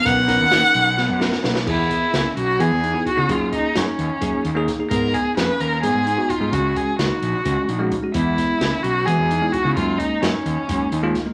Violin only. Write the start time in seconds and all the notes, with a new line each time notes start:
0.06 F#5
1.67 E4
2.37 F#4
2.60 G#4
3.08 F#4
3.31 F4
3.54 D#4
3.77 C#4
4.90 A#4
5.14 G#4
5.37 B4
5.60 A#4
5.83 G#4
6.30 F4
6.53 F#4
6.77 G#4
6.99 F#4
8.14 E4
8.82 F#4
9.05 G#4
9.52 F#4
9.76 F4
9.98 D#4
10.22 C#4